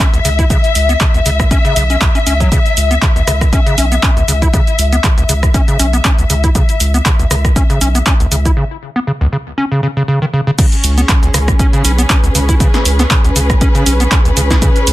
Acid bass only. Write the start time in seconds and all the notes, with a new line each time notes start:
0.14 C#2
0.25 C#3
0.39 E4
0.50 C#3
0.89 B3
1.01 C#3
1.14 C#2
1.26 C#3
1.51 C#4
1.65 C#3
1.76 C#3
1.90 C#4
2.01 C#2
2.15 C#4
2.27 C#4
2.40 F#3
2.52 C#3
2.91 B3
3.02 C#3
3.16 C#2
3.27 C#3
3.53 C#4
3.66 C#3
3.78 C#4
3.92 B3
4.03 C#4
4.17 C#2
4.28 C#3
4.42 E4
4.53 C#3
4.92 B3
5.04 C#3
5.18 C#2
5.29 C#3
5.54 C#4
5.68 C#3
5.79 C#4
5.93 B3
6.05 C#4
6.19 C#2
6.30 C#3
6.44 E4
6.55 C#3
6.94 B3
7.06 C#3
7.19 C#2
7.31 C#3
7.56 C#4
7.70 C#3
7.81 C#4
7.95 B3
8.06 C#4
8.20 C#2
8.32 C#3
8.45 E4
8.57 C#3
8.96 B3
9.07 C#3
9.21 C#2
9.32 C#3
9.58 C#4
9.72 C#3
9.83 C#3
9.97 C#3
10.08 C#3
10.22 D#3
10.33 C#3
10.47 C#3
10.59 C#3
10.98 B3
11.09 C#3
11.23 C#2
11.34 C#3
11.59 C#4
11.73 C#3
11.85 C#4
11.98 B3
12.10 C#4
12.24 C#2
12.35 C#3
12.49 E4
12.60 C#3
12.99 B3
13.11 C#3
13.24 C#2
13.36 C#3
13.61 C#4
13.75 C#3
13.86 C#4
14.00 B3
14.12 C#4
14.25 C#2
14.37 C#3
14.51 E4
14.62 C#3